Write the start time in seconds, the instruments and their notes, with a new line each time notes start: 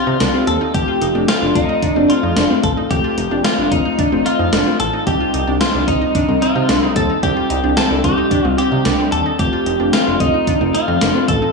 Already playing: synth keys C4 D#4 G4, clean electric guitar F4
0.07 analog synth bass C3, synth arpeggio sound D#4
0.20 analog synth bass C2, synth arpeggio sound D4, snare, closed hi-hat
0.34 synth keys C4 D#4 G4, synth arpeggio sound C4
0.47 analog synth bass D#2, clean electric guitar A4, closed hi-hat
0.61 synth arpeggio sound D#4
0.74 analog synth bass F1, synth keys A3 C4 F4, clean electric guitar G4, synth arpeggio sound G4, kick, closed hi-hat
0.88 synth arpeggio sound F4
1.01 analog synth bass F1, synth arpeggio sound D#4, closed hi-hat
1.15 analog synth bass F1, synth keys A3 C4 F4, synth arpeggio sound D4
1.28 synth arpeggio sound C4, clean electric guitar F4, snare, closed hi-hat
1.42 analog synth bass F1, synth arpeggio sound D4
1.55 analog synth bass F1, synth keys A3 C4 F4, clean electric guitar D#4, kick, closed hi-hat
1.69 synth arpeggio sound D#4
1.83 synth arpeggio sound D4, kick, closed hi-hat
1.96 analog synth bass F1, synth keys A3 C4 F4, synth arpeggio sound C4, clean electric guitar D4
2.10 synth arpeggio sound C4, clean electric guitar F4, closed hi-hat
2.23 analog synth bass F2, synth arpeggio sound D#4
2.37 analog synth bass F1, synth arpeggio sound D4, snare, closed hi-hat
2.50 synth keys A3 C4 F4, synth arpeggio sound C4
2.63 analog synth bass A1, clean electric guitar A4, kick, closed hi-hat
2.77 synth arpeggio sound D#4
2.91 analog synth bass F1, synth keys A3 C4 F4, synth arpeggio sound G4, clean electric guitar G4, kick, closed hi-hat
3.04 synth arpeggio sound F4
3.18 analog synth bass F1, synth arpeggio sound D#4, closed hi-hat
3.31 analog synth bass F1, synth keys A3 C4 F4, synth arpeggio sound D4
3.44 synth arpeggio sound C4, clean electric guitar F4, snare, closed hi-hat
3.58 analog synth bass F1, synth arpeggio sound D4
3.72 analog synth bass F1, synth keys A3 C4 F4, clean electric guitar D#4, kick, closed hi-hat
3.85 synth arpeggio sound D#4
3.99 synth arpeggio sound D4, kick, closed hi-hat
4.12 analog synth bass F1, synth keys A3 C4 F4, synth arpeggio sound C4
4.26 synth arpeggio sound C4, clean electric guitar F4, closed hi-hat
4.39 analog synth bass F2, synth arpeggio sound D#4
4.53 analog synth bass F1, synth arpeggio sound D4, snare, closed hi-hat
4.66 synth keys A3 C4 F4, synth arpeggio sound C4
4.80 analog synth bass A1, clean electric guitar A4, closed hi-hat
4.93 synth arpeggio sound D#4
5.07 analog synth bass C2, synth keys G3 C4 D#4, synth arpeggio sound G4, clean electric guitar G4, kick, closed hi-hat
5.20 synth arpeggio sound F4
5.34 analog synth bass C2, synth arpeggio sound D#4, closed hi-hat
5.47 analog synth bass C2, synth keys G3 C4 D#4, synth arpeggio sound D4
5.61 synth arpeggio sound C4, clean electric guitar F4, snare, closed hi-hat
5.74 analog synth bass C2, synth arpeggio sound D4
5.88 analog synth bass C2, synth keys G3 C4 D#4, clean electric guitar D#4, kick, closed hi-hat
6.01 synth arpeggio sound D#4
6.15 synth arpeggio sound D4, kick, closed hi-hat
6.28 analog synth bass C2, synth keys G3 C4 D#4, synth arpeggio sound C4
6.42 synth arpeggio sound C4, clean electric guitar F4, closed hi-hat
6.55 analog synth bass C3, synth arpeggio sound D#4
6.69 analog synth bass C2, synth arpeggio sound D4, snare, closed hi-hat
6.83 synth keys G3 C4 D#4, synth arpeggio sound C4
6.96 analog synth bass D#2, clean electric guitar A4, kick, closed hi-hat
7.10 synth arpeggio sound D#4
7.23 analog synth bass C2, synth keys G3 C4 D#4, synth arpeggio sound G4, clean electric guitar G4, kick, closed hi-hat
7.37 synth arpeggio sound F4
7.50 analog synth bass C2, synth arpeggio sound D#4, closed hi-hat
7.64 analog synth bass C2, synth keys G3 C4 D#4, synth arpeggio sound D4
7.77 synth arpeggio sound C4, clean electric guitar A4, snare, closed hi-hat
7.91 analog synth bass C2, synth arpeggio sound D4
8.04 analog synth bass C2, synth keys G3 C4 D#4, clean electric guitar G4, kick, closed hi-hat
8.18 synth arpeggio sound D#4
8.31 synth arpeggio sound D4, kick, closed hi-hat
8.45 analog synth bass C2, synth keys G3 C4 D#4, synth arpeggio sound C4
8.58 synth arpeggio sound C4, clean electric guitar G4, closed hi-hat
8.72 analog synth bass C3, synth arpeggio sound D#4
8.85 analog synth bass C2, synth arpeggio sound D4, snare, closed hi-hat
8.99 synth keys G3 C4 D4, synth arpeggio sound C4
9.12 analog synth bass D#2, clean electric guitar A4, closed hi-hat
9.26 synth arpeggio sound D#4
9.39 analog synth bass F1, synth keys A3 C4 F4, synth arpeggio sound G4, clean electric guitar G4, kick, closed hi-hat
9.53 synth arpeggio sound F4
9.66 analog synth bass F1, synth arpeggio sound D#4, closed hi-hat
9.80 analog synth bass F1, synth keys A3 C4 F4, synth arpeggio sound D4
9.93 synth arpeggio sound C4, clean electric guitar F4, snare, closed hi-hat
10.07 analog synth bass F1, synth arpeggio sound D4
10.20 analog synth bass F1, synth keys A3 C4 F4, clean electric guitar D#4, kick, closed hi-hat
10.34 synth arpeggio sound D#4
10.47 synth arpeggio sound D4, kick, closed hi-hat
10.61 analog synth bass F1, synth keys A3 C4 F4, synth arpeggio sound C4
10.74 synth arpeggio sound C4, clean electric guitar F4, closed hi-hat
10.88 analog synth bass F2, synth arpeggio sound D#4
11.01 analog synth bass F1, synth arpeggio sound D4, snare, closed hi-hat
11.15 synth keys A3 C4 F4, synth arpeggio sound C4
11.28 analog synth bass A1, clean electric guitar A4, kick, closed hi-hat
11.42 synth arpeggio sound D#4